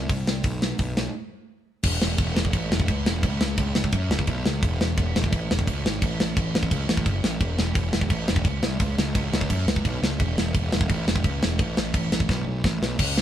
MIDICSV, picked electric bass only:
0, 0, Header, 1, 2, 480
1, 0, Start_track
1, 0, Tempo, 348635
1, 609, Time_signature, 4, 2, 24, 8
1, 18199, End_track
2, 0, Start_track
2, 0, Title_t, "Picked electric bass"
2, 0, Program_c, 0, 34
2, 131, Note_on_c, 0, 36, 85
2, 613, Note_off_c, 0, 36, 0
2, 613, Note_on_c, 0, 35, 101
2, 998, Note_off_c, 0, 35, 0
2, 1092, Note_on_c, 0, 35, 83
2, 1478, Note_off_c, 0, 35, 0
2, 2531, Note_on_c, 0, 28, 97
2, 2747, Note_off_c, 0, 28, 0
2, 2766, Note_on_c, 0, 28, 90
2, 2984, Note_off_c, 0, 28, 0
2, 3007, Note_on_c, 0, 28, 84
2, 3225, Note_off_c, 0, 28, 0
2, 3238, Note_on_c, 0, 28, 99
2, 3460, Note_off_c, 0, 28, 0
2, 3494, Note_on_c, 0, 33, 94
2, 3709, Note_off_c, 0, 33, 0
2, 3729, Note_on_c, 0, 28, 96
2, 3946, Note_off_c, 0, 28, 0
2, 3969, Note_on_c, 0, 37, 98
2, 4186, Note_off_c, 0, 37, 0
2, 4207, Note_on_c, 0, 28, 86
2, 4451, Note_on_c, 0, 37, 105
2, 4472, Note_off_c, 0, 28, 0
2, 4667, Note_off_c, 0, 37, 0
2, 4691, Note_on_c, 0, 37, 99
2, 4906, Note_off_c, 0, 37, 0
2, 4927, Note_on_c, 0, 37, 93
2, 5144, Note_off_c, 0, 37, 0
2, 5169, Note_on_c, 0, 37, 99
2, 5385, Note_off_c, 0, 37, 0
2, 5410, Note_on_c, 0, 42, 91
2, 5625, Note_off_c, 0, 42, 0
2, 5650, Note_on_c, 0, 37, 106
2, 5865, Note_off_c, 0, 37, 0
2, 5887, Note_on_c, 0, 35, 93
2, 6103, Note_off_c, 0, 35, 0
2, 6142, Note_on_c, 0, 37, 90
2, 6351, Note_off_c, 0, 37, 0
2, 6372, Note_on_c, 0, 28, 98
2, 6585, Note_off_c, 0, 28, 0
2, 6620, Note_on_c, 0, 28, 93
2, 6829, Note_off_c, 0, 28, 0
2, 6854, Note_on_c, 0, 28, 97
2, 7066, Note_off_c, 0, 28, 0
2, 7097, Note_on_c, 0, 28, 100
2, 7307, Note_off_c, 0, 28, 0
2, 7338, Note_on_c, 0, 33, 91
2, 7547, Note_off_c, 0, 33, 0
2, 7577, Note_on_c, 0, 28, 103
2, 7787, Note_off_c, 0, 28, 0
2, 7811, Note_on_c, 0, 37, 88
2, 8023, Note_off_c, 0, 37, 0
2, 8052, Note_on_c, 0, 32, 88
2, 8264, Note_off_c, 0, 32, 0
2, 8295, Note_on_c, 0, 33, 97
2, 8505, Note_off_c, 0, 33, 0
2, 8537, Note_on_c, 0, 33, 93
2, 8746, Note_off_c, 0, 33, 0
2, 8773, Note_on_c, 0, 33, 92
2, 8983, Note_off_c, 0, 33, 0
2, 9015, Note_on_c, 0, 33, 94
2, 9224, Note_off_c, 0, 33, 0
2, 9245, Note_on_c, 0, 37, 85
2, 9459, Note_off_c, 0, 37, 0
2, 9488, Note_on_c, 0, 33, 96
2, 9700, Note_off_c, 0, 33, 0
2, 9723, Note_on_c, 0, 30, 89
2, 9937, Note_off_c, 0, 30, 0
2, 9955, Note_on_c, 0, 33, 92
2, 10198, Note_off_c, 0, 33, 0
2, 10198, Note_on_c, 0, 28, 95
2, 10414, Note_off_c, 0, 28, 0
2, 10440, Note_on_c, 0, 28, 91
2, 10654, Note_off_c, 0, 28, 0
2, 10673, Note_on_c, 0, 28, 93
2, 10890, Note_off_c, 0, 28, 0
2, 10913, Note_on_c, 0, 28, 98
2, 11130, Note_off_c, 0, 28, 0
2, 11154, Note_on_c, 0, 33, 88
2, 11371, Note_off_c, 0, 33, 0
2, 11405, Note_on_c, 0, 28, 103
2, 11617, Note_off_c, 0, 28, 0
2, 11637, Note_on_c, 0, 37, 90
2, 11852, Note_off_c, 0, 37, 0
2, 11875, Note_on_c, 0, 36, 84
2, 12091, Note_off_c, 0, 36, 0
2, 12114, Note_on_c, 0, 37, 106
2, 12330, Note_off_c, 0, 37, 0
2, 12364, Note_on_c, 0, 37, 90
2, 12576, Note_off_c, 0, 37, 0
2, 12597, Note_on_c, 0, 37, 92
2, 12812, Note_off_c, 0, 37, 0
2, 12842, Note_on_c, 0, 37, 96
2, 13054, Note_off_c, 0, 37, 0
2, 13082, Note_on_c, 0, 42, 93
2, 13294, Note_off_c, 0, 42, 0
2, 13310, Note_on_c, 0, 37, 101
2, 13528, Note_off_c, 0, 37, 0
2, 13563, Note_on_c, 0, 35, 94
2, 13775, Note_off_c, 0, 35, 0
2, 13796, Note_on_c, 0, 37, 87
2, 14011, Note_off_c, 0, 37, 0
2, 14042, Note_on_c, 0, 28, 99
2, 14254, Note_off_c, 0, 28, 0
2, 14282, Note_on_c, 0, 28, 93
2, 14495, Note_off_c, 0, 28, 0
2, 14527, Note_on_c, 0, 28, 97
2, 14737, Note_off_c, 0, 28, 0
2, 14769, Note_on_c, 0, 28, 101
2, 14978, Note_off_c, 0, 28, 0
2, 15000, Note_on_c, 0, 33, 91
2, 15213, Note_off_c, 0, 33, 0
2, 15241, Note_on_c, 0, 28, 93
2, 15454, Note_off_c, 0, 28, 0
2, 15485, Note_on_c, 0, 37, 101
2, 15696, Note_off_c, 0, 37, 0
2, 15733, Note_on_c, 0, 28, 93
2, 15941, Note_off_c, 0, 28, 0
2, 15962, Note_on_c, 0, 33, 96
2, 16175, Note_off_c, 0, 33, 0
2, 16210, Note_on_c, 0, 33, 94
2, 16420, Note_off_c, 0, 33, 0
2, 16443, Note_on_c, 0, 33, 89
2, 16656, Note_off_c, 0, 33, 0
2, 16688, Note_on_c, 0, 33, 90
2, 16899, Note_off_c, 0, 33, 0
2, 16925, Note_on_c, 0, 35, 97
2, 17138, Note_off_c, 0, 35, 0
2, 17158, Note_on_c, 0, 35, 96
2, 17374, Note_off_c, 0, 35, 0
2, 17412, Note_on_c, 0, 33, 98
2, 17622, Note_off_c, 0, 33, 0
2, 17637, Note_on_c, 0, 35, 84
2, 17855, Note_off_c, 0, 35, 0
2, 17888, Note_on_c, 0, 37, 100
2, 18189, Note_off_c, 0, 37, 0
2, 18199, End_track
0, 0, End_of_file